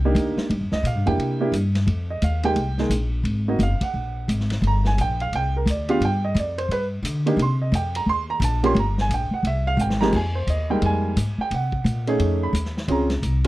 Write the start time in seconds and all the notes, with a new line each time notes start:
Already playing: C2 G5
0.05 A#3 D4 D#4 G4
0.15 D#2, hi-hat pedal, ride
0.36 muted upright bass stroke, snare
0.49 G2, ride
0.61 F2
0.72 C#2 D#5, snare
0.83 A#2 F5, hi-hat pedal, ride
0.95 G2
1.06 F2 A#3 D4 E4 G4 G5, ride
1.17 C3, ride
1.40 A#3 D4 E4 G4
1.52 G2, hi-hat pedal, ride
1.75 snare, ride
1.87 F2, ride
2.10 D#5
2.22 D#2 F5, hi-hat pedal, ride
2.43 G#3 A#3 D#4 G4 G5, ride
2.55 C2, ride
2.78 G#3 A#3 D#4 G#4, snare
2.90 A#1, hi-hat pedal, ride
3.23 G#1, ride
3.48 A#3 C4 D#4 F#4 D#5
3.59 F#1, hi-hat pedal, ride
3.63 F5
3.80 F#5, muted upright bass stroke, kick, ride
3.94 A#1
4.28 G#1, hi-hat pedal, ride
4.40 snare
4.50 snare, ride
4.62 G1, ride
4.67 A#5
4.85 G#5, snare
4.98 A#1 G5, hi-hat pedal, ride
5.20 F5, ride
5.32 C2 G5, ride
5.56 A#4
5.66 D2, hi-hat pedal, ride
5.70 D5
5.89 B3 D4 F4 G4 F5, ride
6.00 G2, ride
6.05 G5
6.25 D#5
6.35 F2, hi-hat pedal, ride
6.39 D5
6.58 C5, ride
6.68 G2 B4, ride
7.03 D3, hi-hat pedal, ride
7.26 A#3 D4 D#4 G4, ride
7.37 C3, ride
7.42 C6
7.62 D#5
7.72 F2 G5, hi-hat pedal, ride
7.95 A#5, ride
8.06 D#2 C6
8.30 A#5
8.40 A#1, hi-hat pedal, ride
8.44 A5
8.63 A#3 C#4 F4 G4 C6, ride
8.75 G1, ride
8.79 A#5
8.98 G#5, snare
9.09 A#1, hi-hat pedal, ride
9.14 G5
9.31 F#5, muted upright bass stroke
9.43 C2, ride
9.47 E5
9.67 F5
9.77 G#1 F#5, hi-hat pedal
9.81 G5
9.90 snare
10.01 F2 G#3 A#3 D#4 G4 A#5, snare
10.12 F2 G#5, kick, crash
10.35 C5
10.47 D#2 D#5, hi-hat pedal, ride
10.70 G3 G#3 A#3 D#4 G5
10.82 F2 G#5, ride
11.16 G#2, hi-hat pedal, ride
11.38 G5, muted upright bass stroke
11.51 C3 F#5, ride
11.72 kick
11.84 A#2, hi-hat pedal, ride
12.07 A3 C#4 D#4 G#4, ride
12.19 F2, ride
12.43 B5
12.53 D#2, hi-hat pedal, ride
12.65 snare
12.77 snare
12.88 C#2 C4 C#4 F4 G#4 A#5, ride
13.10 snare, ride
13.22 C2, hi-hat pedal, ride